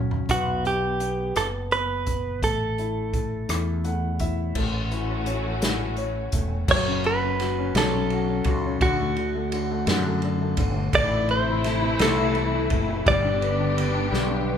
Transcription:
0.00 0.25 C#2 medium
0.00 0.31 F#3 medium
0.00 0.31 C#4 soft
0.11 floor tom medium
0.29 1.32 B1 medium
0.29 0.64 B3 medium
0.29 0.66 F#4 medium
0.29 kick medium
0.29 closed hi-hat medium
0.65 0.99 B3 soft
0.65 1.37 G4 medium
0.65 closed hi-hat soft
1.00 1.35 B3 soft
1.00 closed hi-hat medium
1.36 2.43 F#1 medium
1.36 1.70 B3 soft
1.36 1.47 A4 medium
1.36 cross-stick medium
1.36 closed hi-hat medium
1.71 2.06 B3 soft
1.71 2.44 B4 medium
1.71 closed hi-hat soft
2.06 2.41 B3 soft
2.06 kick medium
2.06 closed hi-hat medium
2.42 3.45 A1 medium
2.42 3.13 A3 medium
2.42 4.17 A4 medium
2.42 kick medium
2.42 closed hi-hat medium
2.78 3.47 E4 soft
2.78 closed hi-hat soft
3.13 3.83 A3 soft
3.13 kick medium
3.13 closed hi-hat medium
3.49 4.51 E2 medium
3.49 4.19 E4 medium
3.49 cross-stick medium
3.49 closed hi-hat medium
3.84 4.53 A3 medium
3.84 4.18 F#5 medium
3.84 closed hi-hat soft
4.19 4.55 E4 medium
4.19 4.53 E5 medium
4.19 kick medium
4.19 closed hi-hat medium
4.55 6.29 A1 medium
4.55 6.67 E3 medium
4.55 6.32 A3 medium
4.55 6.67 A3 medium
4.55 6.67 C#4 medium
4.55 6.67 F#4 medium
4.55 kick medium
4.55 crash medium
4.91 5.60 E4 soft
4.91 closed hi-hat soft
5.26 5.97 C#5 soft
5.26 closed hi-hat medium
5.62 6.65 E4 medium
5.62 snare loud
5.62 closed hi-hat medium
5.97 6.66 C#5 medium
5.97 closed hi-hat soft
6.32 6.66 E1 medium
6.32 6.67 A3 medium
6.32 kick medium
6.32 closed hi-hat medium
6.68 7.71 F#1 loud
6.68 7.75 F#3 medium
6.68 7.06 C#5 loud
6.68 kick loud
6.68 crash loud
6.87 7.21 C#4 medium
7.04 7.39 F#4 medium
7.04 7.77 B4 loud
7.04 ride soft
7.23 7.57 C#4 soft
7.40 8.11 F#4 medium
7.40 snare soft
7.40 ride medium
7.59 7.93 C#4 medium
7.75 8.41 B1 medium
7.75 8.79 F#3 medium
7.75 8.78 A4 medium
7.75 snare loud
7.75 ride medium
7.95 8.28 C#4 soft
8.10 8.46 F#4 medium
8.10 ride soft
8.29 8.64 C#4 medium
8.44 8.79 C#2 medium
8.44 8.81 F#4 medium
8.44 kick medium
8.44 ride medium
8.66 8.82 C#4 medium
8.81 9.83 D2 medium
8.81 9.16 D3 medium
8.81 10.19 F#4 medium
8.81 kick loud
8.81 ride medium
9.00 9.34 A3 medium
9.16 9.52 D3 medium
9.16 ride soft
9.35 9.70 A3 medium
9.52 9.87 D3 medium
9.52 ride medium
9.71 10.04 A3 medium
9.87 10.54 F#2 loud
9.87 10.22 D3 medium
9.87 snare loud
9.87 ride medium
10.06 10.40 A3 medium
10.22 10.57 D3 medium
10.22 ride soft
10.41 10.75 A3 medium
10.57 10.91 G1 loud
10.57 10.93 D3 medium
10.57 kick medium
10.57 ride medium
10.76 10.93 A3 medium
10.93 11.96 A1 loud
10.93 13.04 C3 medium
10.93 13.04 E3 medium
10.93 13.05 A3 medium
10.93 11.28 A3 medium
10.93 13.05 E4 loud
10.93 11.31 D5 loud
10.93 kick loud
10.93 ride medium
11.12 11.47 E4 medium
11.29 11.64 A3 medium
11.29 12.03 C5 loud
11.29 ride soft
11.48 11.81 E4 medium
11.64 11.99 A3 medium
11.64 snare soft
11.64 ride medium
11.83 12.16 E4 medium
11.99 12.67 C2 loud
11.99 12.35 A3 medium
11.99 12.68 A4 medium
11.99 snare loud
11.99 ride medium
12.18 12.52 E4 medium
12.35 12.70 A3 medium
12.35 ride soft
12.53 12.87 E4 medium
12.70 13.04 F#1 loud
12.70 13.05 A3 medium
12.70 kick loud
12.70 ride medium
12.89 13.06 E4 medium
13.06 14.09 G1 loud
13.06 14.58 D3 medium
13.06 14.10 G3 medium
13.06 14.58 G3 medium
13.06 14.58 B3 medium
13.06 14.58 G4 medium
13.06 14.58 D5 loud
13.06 kick loud
13.06 ride medium
13.24 13.58 D4 medium
13.41 13.75 B4 medium
13.41 ride soft
13.59 13.93 D4 medium
13.76 14.46 B4 medium
13.76 ride medium
13.94 14.28 D4 medium
14.12 14.58 B1 medium
14.12 14.58 G3 medium
14.12 snare medium
14.30 14.58 D4 medium
14.48 14.58 B4 medium

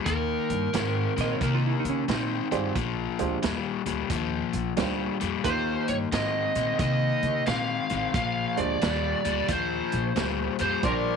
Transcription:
0.06 0.36 D#2 medium
0.06 0.68 D#3 medium
0.06 0.69 A#3 medium
0.06 1.36 A#4 medium
0.06 kick loud
0.06 closed hi-hat medium
0.50 0.67 G2 medium
0.50 closed hi-hat medium
0.73 1.04 G#2 medium
0.73 1.12 D#3 medium
0.73 1.12 C4 medium
0.73 snare loud
0.73 closed hi-hat medium
1.16 1.34 A#2 medium
1.16 1.38 D#3 medium
1.16 1.39 C4 medium
1.16 snare soft
1.16 closed hi-hat medium
1.21 1.34 D#5 medium
1.32 1.40 C#5 medium
1.41 1.71 C3 medium
1.41 2.04 D#3 medium
1.41 2.04 A#3 medium
1.41 1.56 A#4 medium
1.41 kick medium
1.41 closed hi-hat medium
1.55 1.63 F4 medium
1.67 1.79 E4 medium
1.80 1.83 D#4 medium
1.84 2.01 C#3 medium
1.84 closed hi-hat medium
1.89 2.09 C#4 medium
2.08 2.38 A#2 medium
2.08 2.47 D#3 medium
2.08 2.47 C4 loud
2.08 2.75 D#4 medium
2.08 snare medium
2.08 closed hi-hat medium
2.51 2.69 G2 medium
2.51 2.73 D#3 medium
2.51 2.73 C4 medium
2.51 2.73 F4 medium
2.51 2.73 G4 medium
2.51 2.73 G#4 medium
2.51 2.73 C5 medium
2.51 2.73 D5 medium
2.51 closed hi-hat medium
2.75 3.06 A#1 medium
2.75 3.38 A#2 medium
2.75 3.38 F3 medium
2.75 kick loud
2.75 closed hi-hat medium
3.19 3.36 D2 medium
3.19 3.41 G#3 medium
3.19 3.41 D4 medium
3.19 3.41 F4 medium
3.19 3.41 G4 medium
3.19 3.41 C5 medium
3.19 closed hi-hat medium
3.42 3.73 D#2 medium
3.42 3.82 A#2 medium
3.42 3.82 G3 loud
3.42 snare loud
3.42 closed hi-hat medium
3.86 4.03 D2 medium
3.86 4.08 A#2 medium
3.86 4.08 G3 medium
3.86 closed hi-hat medium
4.10 4.40 D#2 medium
4.10 4.73 A#2 medium
4.10 4.73 F3 medium
4.10 kick loud
4.10 closed hi-hat medium
4.53 4.70 A#1 medium
4.53 closed hi-hat medium
4.77 5.08 D2 medium
4.77 5.16 A#2 medium
4.77 5.16 G3 medium
4.77 5.17 G3 medium
4.77 5.16 D4 medium
4.77 5.16 F4 medium
4.77 5.16 G4 medium
4.77 5.16 C5 medium
4.77 snare loud
4.77 closed hi-hat medium
5.20 5.38 F2 medium
5.20 5.42 A#2 medium
5.20 5.42 G3 medium
5.20 closed hi-hat medium
5.44 5.75 D#2 medium
5.44 6.07 D#3 medium
5.44 7.32 A#3 medium
5.44 6.08 A#3 medium
5.44 7.32 D#4 soft
5.44 7.32 F4 medium
5.44 7.32 G4 soft
5.44 5.90 C5 medium
5.44 7.32 C6 medium
5.44 kick medium
5.44 closed hi-hat medium
5.88 6.05 G2 medium
5.88 5.95 C#5 medium
5.88 closed hi-hat medium
6.12 6.42 G#2 medium
6.12 6.51 D#3 medium
6.12 6.52 C4 medium
6.12 6.78 D#5 medium
6.12 snare loud
6.12 closed hi-hat medium
6.55 6.72 A#2 medium
6.55 6.77 D#3 medium
6.55 6.77 C4 medium
6.55 closed hi-hat medium
6.79 7.09 C3 medium
6.79 7.42 D#3 medium
6.79 7.42 A#3 medium
6.79 7.47 D#5 medium
6.79 kick loud
6.79 closed hi-hat medium
7.22 7.39 C#3 medium
7.22 closed hi-hat medium
7.46 7.77 A#2 medium
7.46 7.86 D#3 medium
7.46 7.86 C4 medium
7.46 8.14 F5 loud
7.46 snare medium
7.46 closed hi-hat medium
7.89 8.07 A1 medium
7.89 8.12 D#3 medium
7.89 8.12 C4 medium
7.89 closed hi-hat medium
8.14 8.44 A#1 medium
8.14 8.77 A#2 medium
8.14 8.77 F3 medium
8.14 8.58 F5 loud
8.14 kick loud
8.14 closed hi-hat medium
8.57 8.75 D2 medium
8.57 8.79 G#3 medium
8.57 8.79 D4 medium
8.57 8.79 F4 medium
8.57 8.79 G4 medium
8.57 8.79 C5 medium
8.57 9.52 D5 loud
8.57 closed hi-hat medium
8.81 9.12 D#2 medium
8.81 9.21 A#2 medium
8.81 9.21 G3 medium
8.81 snare loud
8.81 closed hi-hat medium
9.25 9.42 D2 medium
9.25 9.47 A#2 medium
9.25 9.47 G3 medium
9.25 closed hi-hat medium
9.48 9.79 D#2 medium
9.48 10.12 A#2 medium
9.48 10.12 F3 medium
9.48 10.60 C5 medium
9.48 kick loud
9.48 closed hi-hat medium
9.92 10.10 A#1 medium
9.92 closed hi-hat medium
10.16 10.47 D2 loud
10.16 10.55 A#2 medium
10.16 10.55 G3 medium
10.16 snare loud
10.16 closed hi-hat medium
10.59 10.77 F2 medium
10.59 10.81 A#2 medium
10.59 10.82 G3 medium
10.59 10.85 C5 medium
10.59 closed hi-hat medium
10.83 11.14 A#1 medium
10.83 11.16 A#2 medium
10.83 11.16 F3 loud
10.83 11.16 G3 medium
10.83 11.16 D4 medium
10.83 11.16 F4 medium
10.83 11.16 G4 soft
10.83 11.16 G4 medium
10.83 11.16 A#4 medium
10.83 11.16 C5 medium
10.83 11.16 D5 medium
10.83 11.16 C6 medium
10.83 kick loud
10.83 closed hi-hat medium

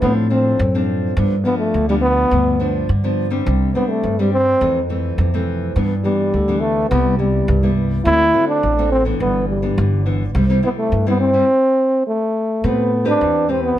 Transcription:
0.01 0.51 A2 medium
0.01 0.57 A2 medium
0.01 0.26 F3 medium
0.01 0.14 B3 medium
0.01 0.26 C4 medium
0.01 0.27 D4 medium
0.29 0.57 F3 medium
0.29 0.84 C4 medium
0.29 0.58 C4 medium
0.29 0.58 D4 medium
0.59 1.08 F#2 loud
0.59 1.14 A2 medium
0.75 1.13 F3 medium
0.75 1.13 C4 medium
0.75 1.13 D4 medium
1.17 1.71 G2 medium
1.17 1.41 G2 loud
1.17 1.34 F3 soft
1.17 1.34 B3 medium
1.17 1.34 D4 medium
1.44 1.84 F3 medium
1.44 1.57 B3 medium
1.44 1.84 B3 medium
1.44 1.84 D4 medium
1.58 1.86 A3 medium
1.74 2.23 D2 medium
1.74 2.29 D3 medium
1.89 2.27 F3 medium
1.89 1.95 G3 medium
1.89 2.28 B3 medium
1.89 2.28 D4 medium
2.01 2.84 B3 loud
2.31 2.80 D2 medium
2.31 2.86 G2 medium
2.31 2.56 F3 medium
2.31 2.56 B3 medium
2.31 2.56 D4 medium
2.60 2.87 F3 medium
2.60 2.87 B3 medium
2.60 2.88 D4 medium
2.89 3.38 G2 medium
2.89 3.44 D3 soft
3.04 3.28 F3 medium
3.04 3.28 B3 medium
3.04 3.28 D4 medium
3.30 3.70 G3 medium
3.30 3.70 C4 medium
3.30 3.70 D4 medium
3.46 3.71 C2 loud
3.46 4.01 C3 medium
3.75 4.14 G3 medium
3.75 3.90 B3 medium
3.75 4.14 C4 medium
3.75 4.14 D4 medium
3.89 4.21 A3 medium
4.03 4.53 G2 medium
4.03 4.59 G2 medium
4.19 4.57 G3 medium
4.19 4.32 G3 medium
4.19 4.58 C4 medium
4.19 4.58 D4 medium
4.33 4.86 C4 loud
4.61 5.10 F2 medium
4.61 5.16 F2 medium
4.61 4.78 E3 medium
4.61 4.79 A3 medium
4.61 4.79 C4 medium
4.89 5.28 E3 soft
4.89 5.28 A3 medium
4.89 5.29 C4 medium
5.18 5.67 F2 medium
5.18 5.73 C3 medium
5.34 5.72 E3 medium
5.34 5.72 A3 medium
5.34 5.72 C4 medium
5.76 6.00 G2 loud
5.76 6.31 G2 medium
5.76 5.93 E3 medium
5.76 5.93 B3 medium
5.76 5.93 D4 medium
6.04 6.32 E3 medium
6.04 6.62 G3 medium
6.04 6.32 B3 medium
6.04 6.32 D4 medium
6.34 6.82 D2 medium
6.34 6.88 D3 medium
6.48 6.86 E3 medium
6.48 6.87 B3 medium
6.48 6.87 D4 medium
6.60 6.88 A3 loud
6.89 7.40 C2 loud
6.89 7.46 C3 medium
6.89 7.15 G3 medium
6.89 7.17 B3 medium
6.89 7.16 B3 medium
6.89 7.16 E4 medium
7.17 7.72 G3 medium
7.17 7.58 G3 medium
7.17 7.58 B3 medium
7.17 7.58 E4 medium
7.48 7.97 C2 loud
7.48 8.03 G2 medium
7.63 8.01 G3 medium
7.63 8.01 B3 medium
7.63 8.02 E4 medium
8.05 8.30 D2 loud
8.05 8.60 D3 medium
8.05 8.22 A3 medium
8.05 8.23 C4 medium
8.05 8.45 E4 loud
8.05 8.23 F#4 medium
8.34 8.72 A3 medium
8.34 8.73 C4 medium
8.34 8.73 F#4 medium
8.48 8.88 D4 loud
8.63 9.12 A1 medium
8.63 9.18 A2 medium
8.78 9.02 A3 medium
8.78 9.02 C4 medium
8.78 9.02 F#4 medium
8.92 9.05 C4 medium
9.05 9.58 E3 medium
9.05 9.58 B3 medium
9.05 9.59 D4 medium
9.20 9.69 G1 medium
9.20 9.75 G2 medium
9.20 9.47 B3 loud
9.48 10.02 G3 medium
9.62 10.01 E3 medium
9.62 10.01 B3 medium
9.62 10.01 D4 medium
9.78 10.26 G1 loud
9.78 10.32 D3 medium
10.06 10.23 E3 medium
10.06 10.23 B3 medium
10.06 10.23 D4 medium
10.35 10.59 C2 loud
10.35 10.89 C3 medium
10.35 10.43 G3 medium
10.35 10.44 C4 medium
10.35 10.44 E4 medium
10.50 10.59 G3 medium
10.50 10.59 C4 medium
10.50 10.60 E4 medium
10.62 10.90 G3 medium
10.62 10.70 B3 medium
10.62 10.90 C4 medium
10.62 10.90 E4 medium
10.78 11.04 A3 medium
10.91 11.46 G2 medium
10.91 11.41 G2 medium
11.06 11.30 G3 medium
11.06 11.20 B3 medium
11.06 11.31 C4 medium
11.06 11.31 E4 medium
11.20 12.02 C4 loud
11.33 11.44 G3 medium
11.33 11.44 C4 soft
11.33 11.44 E4 medium
12.07 12.67 A3 medium
12.64 13.12 A2 medium
12.64 13.18 A3 medium
12.64 13.06 B3 medium
12.64 12.91 C4 medium
12.64 12.91 G4 medium
12.64 12.91 B4 medium
13.05 13.44 C4 medium
13.05 13.52 D4 loud
13.05 13.44 G4 medium
13.05 13.45 B4 medium
13.21 13.70 E2 medium
13.21 13.76 E3 medium
13.48 13.73 C4 medium
13.48 13.63 C4 medium
13.48 13.73 G4 medium
13.48 13.74 B4 medium
13.64 13.79 B3 medium

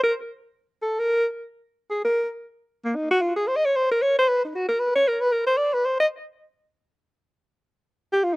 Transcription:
0.04 0.13 A#4 medium
0.82 1.01 A4 medium
0.99 1.25 A#4 loud
1.91 2.04 G#4 medium
2.05 2.29 A#4 medium
2.85 2.97 A#3 medium
2.96 3.10 D#4 medium
3.11 3.23 F#4 medium
3.22 3.36 F4 medium
3.37 3.49 G#4 medium
3.48 3.58 C5 medium
3.56 3.67 D#5 medium
3.65 3.78 C#5 medium
3.76 3.91 C5 medium
3.92 4.04 A#4 medium
4.02 4.17 C#5 medium
4.19 4.30 C5 medium
4.29 4.43 B4 medium
4.45 4.57 D#4 soft
4.56 4.68 F#4 medium
4.69 4.81 A#4 medium
4.80 4.95 B4 medium
4.96 5.10 C#5 loud
5.08 5.23 A#4 medium
5.21 5.34 B4 medium
5.32 5.46 A#4 medium
5.47 5.59 C5 medium
5.58 5.75 D5 medium
5.74 5.87 B4 medium
5.86 6.00 C5 medium
6.00 6.07 D#5 medium
8.13 8.26 G4 medium
8.24 8.35 F4 medium
8.33 8.36 D#4 medium

